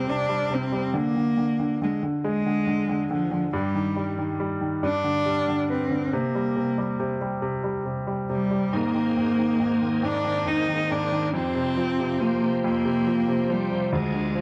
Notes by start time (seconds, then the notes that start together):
Already playing: C3 G3 C4
0.08 C3 D4
0.29 G3
0.50 C3 C4
0.72 G3
0.94 D3 A#3
1.16 D3
1.37 D3
1.60 D3
1.82 D3 G#3
2.03 D3
2.24 G#3
2.46 D3
2.67 D3
2.89 D3
3.11 D3 F3
3.31 D3
3.53 G2 G3
3.75 D#3
3.96 G3
4.19 D#3
4.40 G3
4.61 D#3
4.83 G2 D4
5.04 D3
5.26 G3
5.48 D3
5.70 C4 B4
5.91 D3
6.13 C3 A#3
6.35 G3
6.56 C3
6.78 G3
7.00 C3
7.21 G3
7.42 C3
7.64 G3
7.86 C3
8.07 G3
8.30 C3 G3
8.51 G3
8.72 G#2 D#3 A#3 C4 G#4
8.94 D#3
9.17 G#2
9.39 D#3
9.60 G#2
9.82 D#3
10.03 G#2 D4
10.25 D#3
10.46 G#2 D#4
10.68 D#3
10.90 G#2 D4
11.12 D#3
11.34 F2 F3 C4 G4
11.55 C3
11.77 F3
11.99 C3
12.21 F3 A#3
12.43 C3
12.64 F2 A#3
12.85 C3
13.07 F3
13.28 C3
13.50 F3 G3
13.72 C3
13.93 D2 F3 G#3 D4 G#4
14.14 D3
14.35 F3